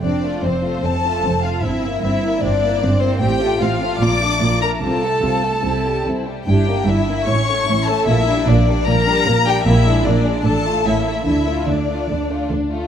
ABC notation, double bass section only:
X:1
M:4/4
L:1/8
Q:1/4=150
K:F
V:1 name="Double bass section" clef=bass
F,,,2 F,,,2 F,,,2 F,,,2 | G,,,2 G,,,2 G,,,2 G,,,2 | A,,,2 A,,,2 B,,,2 B,,,2 | C,,2 C,,2 C,,2 C,,2 |
[K:Dm] G,,,2 G,,,2 A,,,2 A,,,2 | B,,,2 B,,,2 B,,,2 B,,,2 | B,,,2 B,,,2 A,,,2 A,,,2 | D,,2 D,,2 D,,2 D,,2 |]